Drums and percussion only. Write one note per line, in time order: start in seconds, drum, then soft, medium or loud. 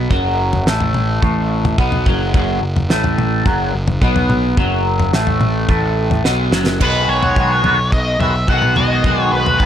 0.11 kick loud
0.11 floor tom medium
0.53 floor tom medium
0.67 snare medium
0.80 floor tom medium
0.94 mid tom medium
1.22 kick medium
1.22 floor tom medium
1.65 floor tom medium
1.65 mid tom medium
1.78 kick loud
1.78 mid tom medium
1.92 floor tom medium
2.06 kick medium
2.06 mid tom medium
2.34 kick loud
2.34 floor tom medium
2.76 floor tom medium
2.90 snare medium
3.04 floor tom medium
3.19 mid tom medium
3.46 kick medium
3.46 floor tom medium
3.88 floor tom medium
3.88 mid tom medium
4.02 kick loud
4.02 mid tom medium
4.16 floor tom medium
4.30 mid tom medium
4.57 kick loud
4.57 floor tom medium
5.00 floor tom medium
5.13 snare medium
5.27 floor tom medium
5.41 mid tom medium
5.69 kick medium
5.69 floor tom medium
6.11 floor tom medium
6.25 snare medium
6.53 snare medium
6.67 snare medium
6.81 kick medium
6.81 floor tom medium
6.81 crash medium
7.23 floor tom medium
7.36 kick medium
7.64 floor tom medium
7.64 mid tom medium
7.92 kick medium
8.20 floor tom medium
8.48 kick medium
8.62 mid tom medium
8.76 floor tom medium
9.04 kick medium
9.04 floor tom medium
9.46 floor tom medium
9.60 kick medium